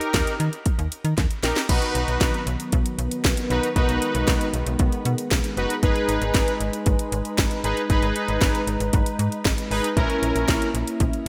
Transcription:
Already playing: analog polysynth D#4 G4 A#4
0.01 closed hi-hat
0.14 fm bass D#2, kick, snare, closed hi-hat
0.27 closed hi-hat
0.40 fm bass D#3, closed hi-hat
0.53 closed hi-hat
0.66 kick, closed hi-hat
0.79 fm bass D#2, closed hi-hat
0.92 closed hi-hat
1.05 fm bass D#3, closed hi-hat
1.18 fm bass D#2, kick, snare, closed hi-hat
1.31 closed hi-hat
1.43 fm bass A#1, analog polysynth D#4 G4 A#4, snare, closed hi-hat
1.56 snare, closed hi-hat
1.69 fm bass B1, analog synth pad D#3 F#3 B3, analog polysynth D#4 F#4 B4, kick, closed hi-hat, crash
1.82 closed hi-hat
1.95 fm bass B1, closed hi-hat
2.08 fm bass B1, closed hi-hat
2.21 fm bass B1, kick, snare, closed hi-hat
2.34 closed hi-hat
2.47 fm bass B1, closed hi-hat
2.60 closed hi-hat
2.72 fm bass B1, kick, closed hi-hat
2.86 closed hi-hat
2.98 fm bass B1, closed hi-hat
3.11 closed hi-hat
3.24 fm bass B1, kick, snare, closed hi-hat
3.37 closed hi-hat
3.50 fm bass B1, analog polysynth D#4 F#4 B4, closed hi-hat
3.63 closed hi-hat
3.76 fm bass B1, analog synth pad G#3, analog polysynth D#4 F#4 B4, kick, closed hi-hat
3.89 fm bass B1, closed hi-hat
4.02 closed hi-hat
4.15 fm bass B1, closed hi-hat
4.28 fm bass B1, kick, snare, closed hi-hat
4.41 closed hi-hat
4.54 fm bass B1, closed hi-hat
4.66 fm bass B1, closed hi-hat
4.79 fm bass B1, kick, closed hi-hat
4.92 closed hi-hat
5.05 fm bass B2, closed hi-hat
5.18 closed hi-hat
5.31 fm bass B1, kick, snare, closed hi-hat
5.44 closed hi-hat
5.57 fm bass F#1, analog polysynth D#4 F#4 B4, closed hi-hat
5.70 closed hi-hat
5.83 fm bass G#1, analog synth pad D#4 B4, analog polysynth D#4 G#4 B4, kick, closed hi-hat
5.96 closed hi-hat
6.09 fm bass G#1, closed hi-hat
6.22 fm bass G#1, closed hi-hat
6.34 fm bass G#1, kick, snare, closed hi-hat
6.48 closed hi-hat
6.60 fm bass G#1, closed hi-hat
6.73 closed hi-hat
6.86 fm bass G#1, kick, closed hi-hat
6.99 closed hi-hat
7.12 fm bass G#1, closed hi-hat
7.25 closed hi-hat
7.38 fm bass G#1, kick, snare, closed hi-hat
7.51 closed hi-hat
7.64 fm bass G#1, analog polysynth D#4 G#4 B4, closed hi-hat
7.77 closed hi-hat
7.90 fm bass G#1, analog polysynth D#4 G#4 B4, kick, closed hi-hat
8.02 fm bass G#1, closed hi-hat
8.16 closed hi-hat
8.28 fm bass G#1, closed hi-hat
8.41 fm bass G#1, kick, snare, closed hi-hat
8.55 closed hi-hat
8.67 fm bass G#1, closed hi-hat
8.80 fm bass G#1, closed hi-hat
8.93 fm bass G#1, kick, closed hi-hat
9.06 closed hi-hat
9.19 fm bass G#2, closed hi-hat
9.32 closed hi-hat
9.45 fm bass G#1, kick, snare, closed hi-hat
9.58 closed hi-hat
9.71 fm bass G#1, analog polysynth D#4 G#4 B4, open hi-hat
9.84 closed hi-hat
9.96 fm bass A#1, analog synth pad A#3 C#4 E4, analog polysynth C#4 E4 A#4, kick, closed hi-hat
10.10 closed hi-hat
10.22 fm bass A#1, closed hi-hat
10.35 fm bass A#1, closed hi-hat
10.48 fm bass A#1, kick, snare, closed hi-hat
10.62 closed hi-hat
10.74 fm bass A#1, closed hi-hat
10.87 closed hi-hat
11.00 fm bass A#1, kick, closed hi-hat
11.13 closed hi-hat

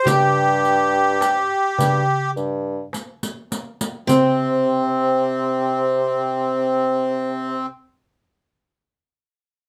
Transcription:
Already playing: qanun C5
0.04 bassoon G2, accordion G4, qanun G4, riq, darbuka dum
0.64 riq, darbuka ka
1.21 riq, darbuka tek
1.78 bassoon G2, riq, darbuka dum
2.36 bassoon G2, riq, darbuka ka
2.93 riq, darbuka tek
3.23 riq
3.51 riq, darbuka ka
3.81 riq
4.07 bassoon C3, qanun C4, accordion C4, riq, darbuka dum

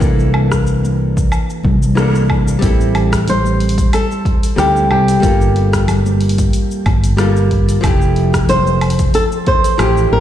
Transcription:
0.00 fretless electric bass C2, hollow-body jazz guitar E3 A#3 D4, kick, shaker
0.04 hollow-body jazz guitar A4
0.19 shaker
0.34 high conga, low woodblock
0.52 kick, cross-stick, shaker
0.67 shaker
0.84 high conga, shaker
1.17 kick, shaker
1.32 low woodblock, shaker
1.50 shaker
1.64 fretless electric bass C2, kick, high conga, low conga
1.83 shaker
1.95 hollow-body jazz guitar E3 A#3 D4 A4, cross-stick, shaker
2.15 shaker
2.30 kick, low woodblock
2.48 shaker
2.59 fretless electric bass A1, hollow-body jazz guitar G3 C4, kick, open hi-hat, shaker
2.63 hollow-body jazz guitar E4 A4
2.81 shaker
2.95 open hi-hat, low woodblock
3.13 kick, cross-stick, open hi-hat, shaker
3.28 nylon-string guitar C5, open hi-hat, low conga, shaker
3.45 high conga, shaker
3.60 open hi-hat
3.69 open hi-hat
3.78 kick, open hi-hat, shaker
3.93 nylon-string guitar A4, open hi-hat, low woodblock, shaker
4.11 shaker
4.25 kick, open hi-hat
4.43 open hi-hat, shaker
4.56 fretless electric bass D2, hollow-body jazz guitar G3 C4 E4 A4, nylon-string guitar G4, cross-stick, open hi-hat, shaker
4.76 shaker
4.90 fretless electric bass C2, nylon-string guitar G4, low woodblock
5.08 open hi-hat, shaker
5.20 fretless electric bass G1, hollow-body jazz guitar G3 A#3, kick, open hi-hat, shaker
5.24 hollow-body jazz guitar F4 A4
5.41 shaker
5.56 open hi-hat
5.73 kick, cross-stick, open hi-hat, shaker
5.88 open hi-hat, low conga, low woodblock, shaker
6.06 high conga, shaker
6.21 open hi-hat
6.29 open hi-hat
6.38 kick, open hi-hat, shaker
6.53 open hi-hat, shaker
6.71 shaker
6.86 fretless electric bass G1, kick, open hi-hat, high conga, low woodblock
7.04 open hi-hat, shaker
7.17 hollow-body jazz guitar G3 A#3 F4 A4, cross-stick, open hi-hat, shaker
7.36 shaker
7.51 kick, open hi-hat
7.69 open hi-hat, shaker
7.81 fretless electric bass F1, hollow-body jazz guitar F3 A3, kick, open hi-hat, low woodblock, shaker
7.85 hollow-body jazz guitar E4 G4
8.02 shaker
8.16 open hi-hat
8.34 kick, cross-stick, open hi-hat, shaker
8.49 nylon-string guitar C5, open hi-hat, low conga, shaker
8.67 high conga, shaker
8.81 open hi-hat, low woodblock
8.90 open hi-hat
8.99 kick, open hi-hat, shaker
9.14 nylon-string guitar A4, open hi-hat, shaker
9.32 shaker
9.47 nylon-string guitar C5, kick, open hi-hat
9.64 open hi-hat, shaker
9.78 fretless electric bass A1, hollow-body jazz guitar F3 A3 E4 G4, cross-stick, open hi-hat, low woodblock, shaker
9.97 shaker
10.12 fretless electric bass A1, nylon-string guitar A#4

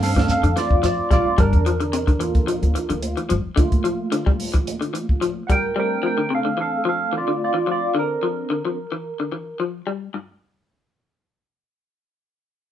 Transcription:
Already playing: upright bass G2
0.01 tine electric piano A3 C4 D4 A4 F5, snare, open hi-hat, shekere
0.16 clean electric guitar E3, kick, snare, closed hi-hat
0.29 tine electric piano A4 F5, closed hi-hat, shekere
0.43 upright bass F2, clean electric guitar D3, closed hi-hat
0.56 clean electric guitar E3, tine electric piano F4 D5, snare, closed hi-hat, shekere
0.71 upright bass F2, kick
0.83 clean electric guitar F3, tine electric piano F4 D5, closed hi-hat, shekere
1.11 upright bass A#1, clean electric guitar G3, tine electric piano F4 D5, kick, closed hi-hat, shekere
1.25 muted upright bass stroke
1.38 upright bass G1, clean electric guitar G3, tine electric piano D4 A#4, kick, closed hi-hat
1.53 upright bass E2, kick, closed hi-hat
1.66 clean electric guitar F3, closed hi-hat
1.80 clean electric guitar D3, closed hi-hat
1.93 clean electric guitar C3, closed hi-hat
2.07 clean electric guitar D3, kick, closed hi-hat
2.19 clean electric guitar E3, tine electric piano A#3 F4 A4, closed hi-hat
2.35 kick, closed hi-hat
2.47 clean electric guitar F3, closed hi-hat
2.62 upright bass D2, closed hi-hat
2.75 clean electric guitar E3, closed hi-hat
2.89 upright bass D2, clean electric guitar D3, closed hi-hat
3.02 tine electric piano A3 A#3 F4, closed hi-hat
3.17 clean electric guitar E3, closed hi-hat
3.29 upright bass G1, clean electric guitar F3, closed hi-hat
3.45 muted upright bass stroke
3.56 clean electric guitar D3, tine electric piano A3 A#3 F4, kick, closed hi-hat
3.72 kick, closed hi-hat
3.84 clean electric guitar F3, closed hi-hat
4.12 clean electric guitar D3, closed hi-hat
4.26 clean electric guitar G3, kick
4.40 open hi-hat
4.54 clean electric guitar E3, kick, closed hi-hat
4.67 closed hi-hat
4.81 clean electric guitar D3, closed hi-hat
4.94 clean electric guitar E3, closed hi-hat
5.09 kick
5.21 clean electric guitar F3, closed hi-hat
5.47 clean electric guitar G3, tine electric piano F#5, kick, closed hi-hat
5.51 tine electric piano A#4 G5
5.76 clean electric guitar G3, tine electric piano A3 C4 D4 A#4 G5
6.03 clean electric guitar F3, tine electric piano A#4 G5
6.18 clean electric guitar D3
6.30 clean electric guitar C3, tine electric piano A4
6.35 tine electric piano F5
6.45 clean electric guitar D3
6.58 clean electric guitar E3, tine electric piano A4
6.62 tine electric piano F5
6.85 clean electric guitar F3, tine electric piano A4 F5
7.13 clean electric guitar E3
7.17 tine electric piano F4 D5
7.28 clean electric guitar D3
7.44 tine electric piano F4 D5
7.54 clean electric guitar E3
7.67 clean electric guitar F3
7.71 tine electric piano F4 D5
7.95 clean electric guitar D3, tine electric piano C4 D4 A4
7.99 tine electric piano A#4
8.23 clean electric guitar F3
8.50 clean electric guitar D3
8.65 clean electric guitar F3
8.92 clean electric guitar E3
9.20 clean electric guitar D3
9.32 clean electric guitar E3
9.60 clean electric guitar F3
9.87 clean electric guitar G3
10.14 clean electric guitar G2

